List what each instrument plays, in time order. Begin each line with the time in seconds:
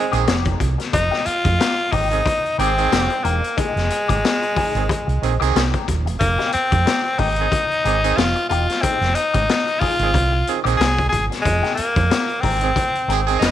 Already playing: tenor saxophone G#3
0.12 fingered electric bass A#1, horn section D#3 C4 G#4, clean electric guitar G#3 D#4 G4, closed hi-hat
0.26 fingered electric bass F1, clean electric guitar G#3 D#4 G4, snare, closed hi-hat
0.45 kick, closed hi-hat
0.60 fingered electric bass C2, muted clean electric guitar stroke, kick, closed hi-hat
0.78 muted clean electric guitar stroke, snare, closed hi-hat
0.93 fingered electric bass F1, tenor saxophone D#4, muted clean electric guitar stroke, kick, closed hi-hat
1.11 clean electric guitar G#3 D#4 G4, snare
1.25 tenor saxophone F4, muted clean electric guitar stroke, muted fingered electric bass stroke, closed hi-hat
1.44 fingered electric bass F2, muted clean electric guitar stroke, kick, closed hi-hat
1.59 clean electric guitar G#3 D#4 G4, snare, closed hi-hat
1.91 fingered electric bass G#1, clean electric guitar G#3 D#4 G4, tenor saxophone D#4, kick, open hi-hat
2.11 horn section D#3 C4 G#4, muted clean electric guitar stroke, closed hi-hat
2.25 muted clean electric guitar stroke, kick, closed hi-hat
2.45 closed hi-hat
2.58 fingered electric bass G#1, horn section D#3 C4 G#4, clean electric guitar G#3 D#4 G4, tenor saxophone C4, closed hi-hat
2.76 horn section D#3 C4 G#4, muted clean electric guitar stroke, closed hi-hat
2.91 fingered electric bass F1, muted clean electric guitar stroke, snare, closed hi-hat
3.10 muted clean electric guitar stroke, closed hi-hat
3.24 fingered electric bass E1, clean electric guitar G#3 D#4 G4, tenor saxophone A#3, closed hi-hat
3.43 muted clean electric guitar stroke, closed hi-hat
3.57 clean electric guitar G#3 D#4 G4, tenor saxophone G#3, kick, closed hi-hat
3.76 fingered electric bass F1, muted clean electric guitar stroke, snare, closed hi-hat
3.90 muted clean electric guitar stroke, closed hi-hat
4.08 fingered electric bass G#1, clean electric guitar G#3 D#4 G4, kick, closed hi-hat
4.24 muted clean electric guitar stroke, snare, closed hi-hat
4.42 muted clean electric guitar stroke, closed hi-hat
4.55 clean electric guitar G#3 D#4 G#4, muted fingered electric bass stroke, kick, open hi-hat
4.74 fingered electric bass G#1, horn section D#3 C4 G#4, closed hi-hat
4.88 muted clean electric guitar stroke, kick, closed hi-hat
5.07 fingered electric bass C2, muted clean electric guitar stroke, closed hi-hat
5.22 fingered electric bass A#1, horn section D#3 C4 G#4, closed hi-hat
5.40 fingered electric bass C2, horn section D#3 C4 G#4, clean electric guitar G#3 D#4 G4, closed hi-hat
5.55 fingered electric bass C2, clean electric guitar G#3 D#4 G4, snare, closed hi-hat
5.74 kick, closed hi-hat
5.88 fingered electric bass D#1, kick, closed hi-hat
6.06 fingered electric bass E1, muted clean electric guitar stroke, closed hi-hat
6.20 fingered electric bass F1, tenor saxophone A#3, muted clean electric guitar stroke, kick, closed hi-hat
6.39 clean electric guitar G#3 D#4 G4, snare, closed hi-hat
6.52 tenor saxophone C4, muted fingered electric bass stroke, closed hi-hat
6.71 fingered electric bass F2, muted clean electric guitar stroke, kick, closed hi-hat
6.85 clean electric guitar G#3 D#4 G4, snare, closed hi-hat
7.04 muted clean electric guitar stroke
7.18 fingered electric bass G#1, clean electric guitar G#3 D#4 G4, tenor saxophone D#4, kick, open hi-hat
7.36 horn section D#3 C4 G#4, muted clean electric guitar stroke, closed hi-hat
7.52 muted clean electric guitar stroke, kick, closed hi-hat
7.71 closed hi-hat
7.84 fingered electric bass G#1, horn section D#3 C4 G#4, clean electric guitar G#3 D#4 G4, closed hi-hat
8.03 horn section D#3 C4 G#4, muted clean electric guitar stroke, closed hi-hat
8.17 fingered electric bass F1, tenor saxophone F4, muted clean electric guitar stroke, snare, closed hi-hat
8.36 muted clean electric guitar stroke, closed hi-hat
8.49 fingered electric bass E1, clean electric guitar G#3 D#4 G4, tenor saxophone F4, closed hi-hat
8.69 muted clean electric guitar stroke, snare, closed hi-hat
8.82 clean electric guitar G#3 D#4 G4, tenor saxophone C4, kick, closed hi-hat
9.01 fingered electric bass F1, muted clean electric guitar stroke, snare, closed hi-hat
9.15 tenor saxophone D#4, muted clean electric guitar stroke, closed hi-hat
9.33 fingered electric bass G#1, clean electric guitar G#3 D#4 G4, kick, closed hi-hat
9.49 snare, closed hi-hat
9.67 muted clean electric guitar stroke, closed hi-hat
9.80 clean electric guitar G#3 D#4 G#4, tenor saxophone F4, muted fingered electric bass stroke, kick, open hi-hat
9.99 fingered electric bass G#1, horn section D#3 C4 G#4, closed hi-hat
10.14 fingered electric bass C2, muted clean electric guitar stroke, kick, closed hi-hat
10.32 muted clean electric guitar stroke
10.47 horn section D#3 C4 G#4, closed hi-hat
10.64 fingered electric bass A#1, horn section D#3 C4 G#4, clean electric guitar G#3 D#4 G4, closed hi-hat
10.77 fingered electric bass C2, clean electric guitar G#3 D#4, tenor saxophone G#4, snare, closed hi-hat
10.98 kick, closed hi-hat
11.09 fingered electric bass G#1, tenor saxophone G#4, muted clean electric guitar stroke, kick, closed hi-hat
11.30 muted clean electric guitar stroke, snare, closed hi-hat
11.42 fingered electric bass F1, tenor saxophone G#3, muted clean electric guitar stroke, kick, closed hi-hat
11.63 clean electric guitar G#3 D#4 G4, snare, closed hi-hat
11.75 tenor saxophone A#3, muted fingered electric bass stroke, closed hi-hat
11.96 fingered electric bass F2, muted clean electric guitar stroke, kick, closed hi-hat
12.11 clean electric guitar G#3 D#4 G4, snare, closed hi-hat
12.29 muted clean electric guitar stroke, closed hi-hat
12.41 fingered electric bass G#1, clean electric guitar G#3 D#4 G4, tenor saxophone C4, kick, open hi-hat
12.61 horn section D#3 C4 G#4, muted clean electric guitar stroke, closed hi-hat
12.76 muted clean electric guitar stroke, kick, closed hi-hat
12.95 closed hi-hat
13.08 fingered electric bass G#1, horn section D#3 C4 G#4, clean electric guitar G#3 D#4 G4, closed hi-hat
13.27 horn section D#3 C4 G#4, muted clean electric guitar stroke, closed hi-hat
13.39 fingered electric bass F1, tenor saxophone D#4, muted clean electric guitar stroke, snare, closed hi-hat